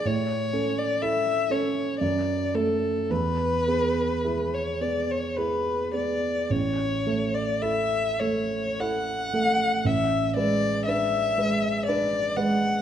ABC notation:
X:1
M:3/4
L:1/16
Q:1/4=56
K:A
V:1 name="Violin"
c3 d e2 c2 d2 A2 | B4- B c d c B2 d2 | c3 d e2 c2 f4 | e2 d2 e4 d2 f2 |]
V:2 name="Grand piano"
A,,2 [CA]2 [EA]2 [CA]2 F,,2 [A,A]2 | E,,2 [B,G]2 [EG]2 [B,G]2 [EG]2 [B,G]2 | A,,,2 [A,A]2 [EA]2 [A,A]2 [EA]2 [A,A]2 | A,,,2 [G,B]2 [DB]2 [G,B]2 [DB]2 [G,B]2 |]